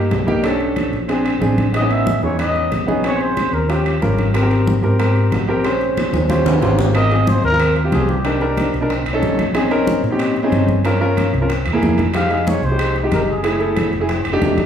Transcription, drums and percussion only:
0.11 high bongo, low bongo, high conga, high timbale, low timbale
0.28 high conga
0.44 high bongo, high conga, high timbale
0.60 high bongo, high conga
0.76 high bongo, high conga, high timbale
0.93 high bongo, high conga
1.09 high bongo, high conga, high timbale
1.25 high bongo, high conga, high timbale
1.42 high bongo, low bongo, high conga
1.58 high conga, high timbale
1.74 high bongo, high conga, high timbale
1.90 high bongo, high conga, high timbale
2.07 high bongo, high conga
2.23 high bongo, high conga
2.39 high bongo, high conga, high timbale
2.55 high bongo, high conga
2.72 high bongo, low bongo, high conga, high timbale
2.88 high conga
3.04 high bongo, high conga, high timbale
3.20 high bongo, high conga
3.37 high bongo, high conga, high timbale
3.53 high bongo, high conga
3.70 high bongo, high conga, high timbale
3.86 high bongo, high conga, high timbale
4.02 high bongo, low bongo, high conga
4.18 high conga, high timbale
4.34 high bongo, high timbale
4.51 high bongo, high conga, high timbale
4.67 high bongo, high conga
4.83 high bongo, high conga
5.00 high bongo, high conga, high timbale
5.16 high bongo, high conga
5.32 high bongo, low bongo, high conga, high timbale, low timbale
5.64 high bongo, high conga, high timbale
5.81 high bongo, high conga
5.97 high bongo, high conga, high timbale
6.14 high bongo, high conga
6.30 high bongo, high conga, high timbale
6.46 low bongo, low conga, high timbale
6.62 low bongo, low conga, high timbale
6.79 low bongo, low conga, low timbale
6.95 high bongo, high conga, high timbale
7.11 high bongo, high conga, high timbale
7.27 high bongo, high conga
7.44 high bongo, high conga
7.60 high bongo, high conga, high timbale
7.76 high bongo, high conga
7.92 high bongo, low bongo, high conga, high timbale, low timbale
8.09 high conga
8.25 high bongo, high conga, high timbale
8.41 high bongo, high conga
8.57 high bongo, high conga, high timbale
8.74 high bongo, high conga
8.90 high bongo, high conga, high timbale
9.06 high bongo, high conga, high timbale
9.22 high bongo, low bongo, high conga, low timbale
9.39 high conga, high timbale
9.55 high bongo, high conga, high timbale
9.71 high bongo, high conga, high timbale
9.87 high bongo, high conga
10.04 high bongo, high conga
10.19 high bongo, high conga, high timbale
10.36 high bongo, high conga
10.52 high bongo, low bongo, high conga, high timbale
10.68 high conga
10.85 high bongo, high conga, high timbale
11.01 high bongo, high conga
11.17 high bongo, high conga, high timbale
11.34 high bongo, high conga
11.49 high bongo, high conga, high timbale
11.66 high bongo, high conga, high timbale
11.82 high bongo, low bongo, high conga, low timbale
11.98 high conga, high timbale
12.14 high bongo, high conga, high timbale
12.30 high bongo, high conga, high timbale
12.47 high bongo, high conga
12.63 high bongo, high conga
12.79 high bongo, high conga, high timbale
12.96 high bongo, high conga
13.12 high bongo, low bongo, high conga, high timbale
13.44 high bongo, high conga, high timbale
13.60 high bongo, high conga
13.76 high bongo, high conga, high timbale
13.93 high bongo, high conga
14.09 high bongo, high conga, high timbale
14.25 high bongo, high conga, high timbale
14.42 high bongo, low bongo, high conga, low timbale
14.58 high conga, high timbale

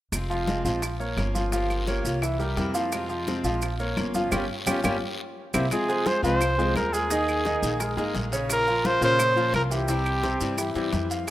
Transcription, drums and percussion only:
0.12 high bongo, high conga, long guiro, claves, maracas
0.30 high bongo, high conga, maracas
0.47 high bongo, high conga, short guiro, maracas
0.65 high bongo, high conga, short guiro, maracas
0.82 high bongo, high conga, long guiro, claves, maracas
1.00 high conga, maracas
1.17 high bongo, low bongo, high conga, short guiro, claves, maracas
1.35 high bongo, high conga, short guiro, maracas
1.52 high bongo, high conga, long guiro, maracas
1.70 high bongo, high conga, claves, maracas
1.87 high bongo, high conga, short guiro, maracas
2.05 high bongo, high conga, short guiro, maracas
2.22 high bongo, high conga, long guiro, claves, maracas
2.40 high bongo, high conga, maracas
2.57 high bongo, low bongo, high conga, short guiro, maracas
2.74 high conga, short guiro, maracas
2.92 high bongo, high conga, long guiro, claves, maracas
3.09 high bongo, high conga, maracas
3.27 high bongo, high conga, short guiro, maracas
3.44 high conga, short guiro, maracas
3.62 high bongo, high conga, long guiro, claves, maracas
3.79 high conga, maracas
3.97 high bongo, low bongo, high conga, short guiro, claves, maracas
4.14 high bongo, high conga, short guiro, maracas
4.32 low bongo, high conga, long guiro, claves, maracas
4.67 low bongo, high conga, long guiro, claves, maracas
4.84 low bongo, high conga, long guiro, claves, maracas
5.54 low bongo, high conga, long guiro, claves, maracas
5.71 high bongo, high conga, long guiro, claves, maracas
5.89 high bongo, high conga, maracas
6.06 high bongo, high conga, short guiro, maracas
6.24 high bongo, high conga, short guiro, maracas
6.41 high bongo, high conga, long guiro, claves, maracas
6.59 high conga, maracas
6.76 high bongo, low bongo, high conga, short guiro, claves, maracas
6.93 high bongo, short guiro, maracas
7.10 high bongo, high conga, long guiro, maracas
7.28 high bongo, high conga, claves, maracas
7.45 high bongo, high conga, short guiro, maracas
7.63 high bongo, high conga, short guiro, maracas
7.80 high bongo, high conga, long guiro, claves, maracas
7.97 high bongo, high conga, maracas
8.15 high bongo, low bongo, high conga, short guiro, maracas
8.32 high conga, short guiro, maracas
8.50 high bongo, high conga, long guiro, claves, maracas
8.67 high bongo, high conga, maracas
8.84 high bongo, high conga, short guiro, maracas
9.02 high conga, short guiro, maracas
9.19 high bongo, high conga, long guiro, claves, maracas
9.37 high conga, maracas
9.53 high bongo, low bongo, high conga, short guiro, claves, maracas
9.71 high bongo, short guiro, maracas
9.88 high bongo, high conga, long guiro, maracas
10.06 high bongo, high conga, claves, maracas
10.23 high bongo, high conga, short guiro, maracas
10.40 high bongo, high conga, short guiro, maracas
10.58 high bongo, high conga, long guiro, claves, maracas
10.75 high bongo, high conga, maracas
10.93 high bongo, low bongo, high conga, short guiro, maracas
11.10 high conga, short guiro, maracas

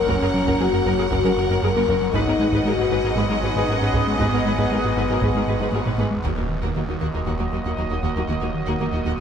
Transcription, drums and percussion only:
0.09 taiko
0.48 taiko
1.11 taiko
1.88 taiko
2.14 taiko
2.52 taiko
3.16 taiko
3.93 taiko
4.19 taiko
4.57 taiko
5.21 taiko
5.72 taiko high
5.85 taiko low-mid
5.98 taiko high
6.11 taiko low
6.25 taiko
7.01 taiko

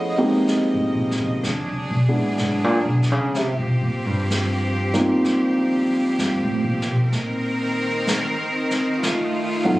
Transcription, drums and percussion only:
0.48 snare
1.11 snare
1.44 brush sweep, snare
2.38 snare
3.03 snare
3.35 brush sweep, snare
4.30 snare
4.94 snare
5.24 brush sweep, snare
6.19 snare
6.82 snare
7.13 brush sweep, snare
8.07 snare
8.71 snare
9.03 brush sweep, snare

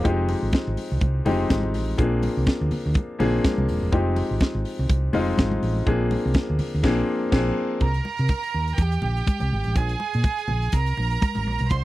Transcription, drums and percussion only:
0.05 kick, closed hi-hat
0.29 open hi-hat, muted conga
0.53 kick, snare, closed hi-hat, high conga
0.77 open hi-hat, muted conga
1.01 kick, closed hi-hat, muted conga
1.26 open hi-hat, muted conga, low conga
1.50 kick, snare, closed hi-hat, high conga
1.63 high conga
1.74 snare, open hi-hat
1.98 kick, closed hi-hat
2.23 open hi-hat, muted conga
2.47 kick, snare, closed hi-hat, high conga
2.71 open hi-hat, muted conga, low conga
2.94 kick, closed hi-hat, muted conga
3.20 open hi-hat, muted conga, low conga
3.44 kick, snare, closed hi-hat, high conga
3.58 high conga
3.69 open hi-hat
3.92 kick, closed hi-hat
4.16 open hi-hat, muted conga
4.40 kick, snare, closed hi-hat, high conga
4.65 open hi-hat
4.89 kick, closed hi-hat, muted conga
5.13 open hi-hat, muted conga, low conga
5.38 kick, snare, closed hi-hat, high conga
5.52 high conga
5.63 open hi-hat
5.87 kick, closed hi-hat
6.11 open hi-hat, muted conga
6.34 kick, snare, closed hi-hat, high conga
6.59 open hi-hat, muted conga, low conga
6.83 kick, snare, crash
7.32 kick, snare, crash
7.80 kick, closed hi-hat
7.94 closed hi-hat
8.05 muted conga
8.18 closed hi-hat
8.28 kick, closed hi-hat, high conga
8.43 closed hi-hat
8.68 closed hi-hat
8.78 kick, closed hi-hat, muted conga
8.92 closed hi-hat
9.02 muted conga, low conga
9.17 closed hi-hat
9.27 kick, closed hi-hat, high conga
9.40 closed hi-hat, high conga
9.64 closed hi-hat, high conga
9.75 kick, closed hi-hat
9.89 closed hi-hat
10.00 muted conga
10.14 closed hi-hat
10.23 kick, closed hi-hat, high conga
10.39 closed hi-hat
10.48 muted conga, low conga
10.62 closed hi-hat
10.72 kick, closed hi-hat, muted conga
10.86 closed hi-hat
10.97 muted conga
11.11 closed hi-hat
11.22 kick, closed hi-hat, high conga
11.35 closed hi-hat, high conga
11.59 closed hi-hat, high conga
11.70 kick, closed hi-hat

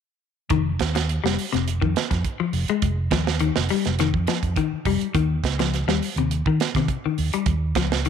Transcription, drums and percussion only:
0.50 kick, closed hi-hat
0.79 kick, snare, closed hi-hat
0.95 snare, closed hi-hat
1.09 closed hi-hat
1.26 snare
1.39 open hi-hat
1.54 snare, closed hi-hat
1.68 closed hi-hat
1.82 kick
1.96 snare, closed hi-hat
2.11 kick, snare, closed hi-hat
2.25 kick, closed hi-hat
2.53 open hi-hat
2.68 closed hi-hat
2.82 kick, closed hi-hat
3.11 kick, snare, closed hi-hat
3.27 snare
3.39 closed hi-hat
3.56 snare
3.69 open hi-hat
3.85 snare, closed hi-hat
3.99 snare, closed hi-hat
4.14 kick
4.27 snare, closed hi-hat
4.43 kick, closed hi-hat
4.56 kick, closed hi-hat
4.85 kick, open hi-hat
5.01 closed hi-hat
5.15 kick, closed hi-hat
5.44 kick, snare, closed hi-hat
5.59 snare, closed hi-hat
5.74 snare, closed hi-hat
5.89 snare
6.02 open hi-hat
6.17 closed hi-hat
6.31 closed hi-hat
6.46 kick
6.60 snare, closed hi-hat
6.75 kick, snare, closed hi-hat
6.88 kick, closed hi-hat
7.18 open hi-hat
7.33 closed hi-hat
7.46 kick, closed hi-hat
7.75 kick, snare, closed hi-hat
7.92 snare
8.05 closed hi-hat

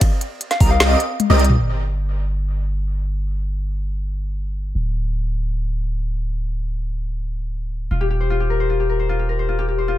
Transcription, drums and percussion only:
0.01 kick, closed hi-hat, ride
0.21 closed hi-hat
0.41 closed hi-hat
0.51 snare, closed hi-hat
0.60 kick, open hi-hat
0.80 snare, closed hi-hat
1.00 closed hi-hat
1.20 closed hi-hat, high tom
1.30 high tom
1.39 closed hi-hat
1.44 closed hi-hat
1.50 mid tom

